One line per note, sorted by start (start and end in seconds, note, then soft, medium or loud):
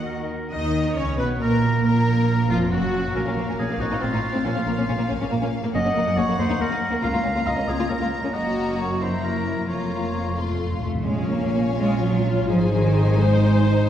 0.00 0.31 D#2 soft
0.00 0.31 D#3 soft
0.00 0.30 A#3 soft
0.00 0.30 F#4 soft
0.00 0.27 D#5 medium
0.00 0.17 F#5 soft
0.05 0.55 A#4 medium
0.52 0.94 D#2 medium
0.52 0.94 D#3 soft
0.52 0.94 D#4 medium
0.52 0.94 D#5 medium
0.52 0.99 D#5 medium
0.52 0.94 D#5 medium
0.95 1.19 C#2 medium
0.95 1.19 C#3 soft
0.95 1.20 C#4 medium
0.95 1.18 C#5 medium
0.95 1.19 C#5 medium
0.95 1.06 C#5 medium
1.18 1.41 B1 medium
1.18 1.41 B2 medium
1.18 1.41 B3 soft
1.18 1.26 B4 medium
1.18 1.29 B4 medium
1.18 1.28 B4 medium
1.41 1.83 A#1 soft
1.41 1.84 A#2 medium
1.41 1.84 A#3 medium
1.41 1.83 A#4 medium
1.41 1.84 A#4 medium
1.84 2.48 A#1 medium
1.84 2.49 A#2 medium
1.84 2.49 A#3 medium
1.84 2.48 A#4 medium
1.84 2.49 A#4 medium
2.49 2.71 F1 medium
2.49 2.72 F2 medium
2.49 2.72 F3 medium
2.49 2.71 F4 medium
2.49 2.58 F4 medium
2.49 2.60 F4 medium
2.71 3.15 F#1 soft
2.71 3.16 F#2 medium
2.71 3.15 F#3 soft
2.71 3.15 F#4 medium
2.71 3.14 F#4 medium
2.71 3.15 F#4 soft
3.14 3.19 A#1 medium
3.14 3.76 A#2 medium
3.14 3.21 A#2 medium
3.14 3.20 A#3 medium
3.14 3.20 C#4 medium
3.14 3.58 A#4 medium
3.14 5.70 F5 medium
3.26 3.31 A#2 soft
3.26 3.30 A#3 soft
3.26 3.31 C#4 soft
3.36 3.41 A#1 soft
3.36 3.42 A#2 soft
3.36 3.41 A#3 soft
3.36 3.43 A#3 soft
3.48 3.52 A#2 medium
3.48 3.53 A#3 medium
3.48 3.53 C#4 medium
3.58 3.62 A#1 soft
3.58 3.63 A#2 soft
3.58 3.63 A#3 soft
3.58 3.65 C#4 soft
3.58 3.82 G#4 medium
3.69 3.74 A#2 soft
3.69 3.74 A#3 soft
3.69 3.76 A#3 soft
3.79 3.84 A1 medium
3.79 3.84 A2 medium
3.79 3.85 C4 medium
3.79 3.85 D#4 medium
3.79 4.04 F#4 medium
3.91 3.95 A2 soft
3.91 3.95 C4 soft
3.91 3.96 D#4 medium
4.02 4.07 A1 soft
4.02 4.06 A2 soft
4.02 4.06 C4 soft
4.02 4.07 C4 soft
4.02 4.45 F4 medium
4.13 4.17 A2 medium
4.13 4.18 C4 medium
4.13 4.17 D#4 medium
4.34 4.39 A2 soft
4.34 4.38 C4 medium
4.34 4.39 C4 medium
4.45 4.50 A#1 medium
4.45 5.06 A#2 medium
4.45 4.50 A#2 medium
4.45 4.51 A#3 medium
4.45 4.50 C#4 medium
4.45 5.09 F4 medium
4.56 4.61 A#2 soft
4.56 4.61 A#3 soft
4.56 4.60 C#4 soft
4.67 4.72 A#1 soft
4.67 4.72 A#2 soft
4.67 4.72 A#3 soft
4.78 4.82 A#2 medium
4.78 4.83 A#3 medium
4.78 4.82 C#4 medium
4.88 4.94 A#1 soft
4.88 4.92 A#2 soft
4.88 4.93 A#3 soft
4.88 4.93 C#4 soft
4.98 5.03 A#2 soft
4.98 5.04 A#3 medium
5.09 5.15 A#1 medium
5.09 5.13 A#2 medium
5.09 5.16 A#3 medium
5.09 5.14 C#4 medium
5.21 5.25 A#2 soft
5.21 5.26 A#3 soft
5.21 5.25 C#4 medium
5.31 5.36 A#1 soft
5.31 5.36 A#2 soft
5.31 5.35 A#3 medium
5.31 5.36 A#3 medium
5.42 5.46 A#2 medium
5.42 5.47 A#3 medium
5.42 5.46 C#4 medium
5.63 5.68 A#2 soft
5.63 5.68 A#3 medium
5.74 5.79 F#1 medium
5.74 5.78 F#2 medium
5.74 5.79 A#3 medium
5.74 5.79 C#4 medium
5.74 6.19 D#5 medium
5.74 7.03 F#5 medium
5.85 5.89 F#2 medium
5.85 5.89 A#3 soft
5.85 5.90 C#4 soft
5.95 6.00 F#1 soft
5.95 6.00 F#2 soft
5.95 6.00 A#3 soft
5.95 6.01 A#3 soft
6.07 6.11 F#2 medium
6.07 6.11 A#3 medium
6.07 6.11 C#4 medium
6.16 6.21 F#1 soft
6.16 6.21 F#2 soft
6.16 6.22 A#3 soft
6.16 6.22 C#4 soft
6.16 6.38 C#5 medium
6.28 6.32 F#2 soft
6.28 6.33 A#3 soft
6.38 6.43 D#2 medium
6.38 6.43 A#3 medium
6.38 6.44 D#4 medium
6.38 6.62 C5 medium
6.50 6.54 D#2 soft
6.50 6.54 A#3 soft
6.50 6.54 D#4 medium
6.60 6.64 D#2 soft
6.60 6.64 A#3 soft
6.60 6.65 A#3 soft
6.60 7.03 A#4 medium
6.70 6.75 D#2 medium
6.70 6.75 A#3 medium
6.70 6.74 D#4 medium
6.91 6.96 D#2 soft
6.91 6.96 A#3 medium
6.91 6.97 A#3 soft
7.03 7.07 C#2 medium
7.03 7.08 A#3 medium
7.03 7.07 F4 medium
7.03 7.49 F5 medium
7.03 8.31 A#5 medium
7.13 7.18 C#2 soft
7.13 7.18 A#3 soft
7.13 7.18 F4 soft
7.24 7.28 C#2 soft
7.24 7.29 C#2 soft
7.24 7.29 A#3 soft
7.24 7.29 C#4 soft
7.35 7.40 C#2 medium
7.35 7.39 A#3 soft
7.35 7.40 F4 medium
7.46 7.50 C#2 soft
7.46 7.52 C#2 soft
7.46 7.51 A#3 soft
7.46 7.51 F4 soft
7.46 7.70 D#5 medium
7.57 7.61 C#2 soft
7.57 7.62 A#3 soft
7.57 7.62 C#4 soft
7.68 7.72 C#2 medium
7.68 7.73 C#2 medium
7.68 7.73 A#3 medium
7.68 7.74 F4 medium
7.68 7.91 G#4 medium
7.78 7.83 C#2 soft
7.78 7.83 A#3 soft
7.78 7.84 F4 soft
7.89 7.93 C#2 soft
7.89 7.94 C#2 soft
7.89 7.95 A#3 soft
7.89 7.95 C#4 soft
7.89 8.35 A#4 medium
8.00 8.04 C#2 medium
8.00 8.05 A#3 medium
8.00 8.06 F4 medium
8.22 8.27 C#2 soft
8.22 8.28 A#3 soft
8.22 8.28 C#4 soft
8.33 9.65 F#1 soft
8.33 9.64 F#2 medium
8.33 8.97 A#3 soft
8.33 8.97 F#4 soft
8.33 8.78 D#5 medium
8.33 8.97 A#5 soft
8.80 9.01 C#5 medium
9.00 9.67 A#3 soft
9.00 9.68 E4 soft
9.00 9.23 C5 medium
9.00 9.67 A#5 soft
9.23 9.67 A#4 medium
9.67 10.84 F1 soft
9.67 10.80 F2 soft
9.67 10.36 A#3 soft
9.67 10.36 F4 soft
9.67 10.35 C#5 soft
9.67 10.36 A#5 soft
10.37 10.43 F2 soft
10.37 10.85 A3 soft
10.37 10.85 F4 soft
10.37 10.86 C6 soft
10.44 10.50 F2 soft
10.51 10.57 F2 soft
10.58 10.64 F2 soft
10.65 10.71 F2 soft
10.72 10.79 F2 soft
10.80 10.86 F2 soft
10.80 11.04 A3 medium
10.87 10.93 F2 medium
10.94 11.02 F2 medium
11.05 12.45 A#1 medium
11.05 11.74 A#2 medium
11.05 11.30 G#3 medium
11.05 11.74 C#4 medium
11.05 12.45 C#4 soft
11.05 12.46 F4 soft
11.05 12.45 C#5 soft
11.05 12.45 C#5 medium
11.05 12.45 F5 soft
11.30 11.53 A#3 medium
11.54 11.62 A#3 medium
11.77 12.01 G#3 medium
11.77 12.48 F4 medium
12.01 12.48 F#3 medium
12.48 13.89 G#1 medium
12.48 12.57 F3 medium
12.48 13.89 D#4 soft
12.48 13.20 D#4 medium
12.48 13.21 G#4 medium
12.48 13.19 C5 soft
12.48 13.89 C5 medium
12.48 13.88 G#5 medium
12.73 13.20 D#3 medium
13.21 13.69 G#3 medium
13.21 13.89 D#4 medium
13.21 13.89 C5 medium